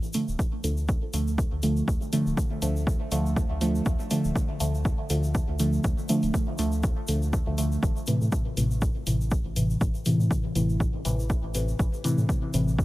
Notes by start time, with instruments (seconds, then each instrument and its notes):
0.03 shaker
0.13 synth stab D3 F3 A3, open hi-hat, shaker
0.28 analog synth bass D1, shaker
0.39 kick, shaker
0.64 analog synth bass D2, synth stab D3 F3 A3, open hi-hat, shaker
0.77 shaker
0.88 kick, shaker
1.13 analog synth bass D2, synth stab D3 F3 A3, open hi-hat, shaker
1.27 shaker
1.38 kick, shaker
1.52 analog synth bass D2
1.63 synth stab D3 F3 A3, open hi-hat, shaker
1.77 shaker
1.88 analog synth bass D2, kick, shaker
2.02 shaker
2.13 synth stab D3 F3 A3, open hi-hat, shaker
2.26 analog synth bass D1, shaker
2.37 kick, shaker
2.62 analog synth bass D2, synth stab D3 F3 A3, open hi-hat, shaker
2.76 shaker
2.87 kick, shaker
3.12 analog synth bass D2, synth stab D3 F3 A3, open hi-hat, shaker
3.26 shaker
3.36 kick, shaker
3.50 analog synth bass D2
3.61 synth stab D3 F3 A3, open hi-hat, shaker
3.75 shaker
3.86 analog synth bass D2, kick, shaker
3.99 shaker
4.11 synth stab D3 F3 A3, open hi-hat, shaker
4.24 analog synth bass D1, shaker
4.36 kick, shaker
4.60 analog synth bass D2, synth stab D3 F3 A3, open hi-hat, shaker
4.75 shaker
4.85 kick, shaker
5.10 analog synth bass D2, synth stab D3 F3 A3, open hi-hat, shaker
5.23 shaker
5.35 kick, shaker
5.49 analog synth bass D2
5.59 synth stab D3 F3 A3, open hi-hat, shaker
5.73 shaker
5.84 analog synth bass D2, kick, shaker
5.98 shaker
6.09 synth stab D3 F3 A3, open hi-hat, shaker
6.23 analog synth bass D1, open hi-hat, shaker
6.34 kick, shaker
6.58 analog synth bass D2, synth stab D3 F3 A3, open hi-hat, shaker
6.72 shaker
6.83 kick, shaker
7.07 analog synth bass D2, synth stab D3 F3 A3, open hi-hat, shaker
7.22 shaker
7.33 kick, shaker
7.47 analog synth bass D2, synth stab D3 F3 A3
7.58 synth stab D3 F3 A3, open hi-hat, shaker
7.72 shaker
7.83 analog synth bass A1, kick, shaker
7.97 shaker
8.07 synth stab A2 C3 E3, open hi-hat, shaker
8.21 analog synth bass A2, shaker
8.32 kick, shaker
8.57 analog synth bass A1, synth stab A2 C3 E3, open hi-hat, shaker
8.71 shaker
8.81 kick, shaker
9.07 analog synth bass A1, synth stab A2 C3 E3, open hi-hat, shaker
9.21 shaker
9.31 kick, shaker
9.45 analog synth bass A1
9.56 synth stab A2 C3 E3, open hi-hat, shaker
9.70 shaker
9.81 analog synth bass A1, kick, shaker
9.94 shaker
10.05 synth stab A2 C3 E3, open hi-hat, shaker
10.20 analog synth bass A2, shaker
10.31 kick, shaker
10.55 analog synth bass A1, synth stab A2 C3 E3, open hi-hat, shaker
10.69 shaker
10.80 kick, shaker
11.05 analog synth bass A1, synth stab A2 C3 E3, open hi-hat, shaker
11.19 shaker
11.30 kick, shaker
11.43 analog synth bass A1
11.55 synth stab A2 C3 E3, open hi-hat, shaker
11.68 shaker
11.79 analog synth bass A1, kick, shaker
11.94 shaker
12.04 synth stab A2 C3 E3, open hi-hat, shaker
12.18 analog synth bass A2, shaker
12.29 kick, shaker
12.54 analog synth bass A1, synth stab A2 C3 E3, open hi-hat, shaker
12.68 shaker
12.79 kick, shaker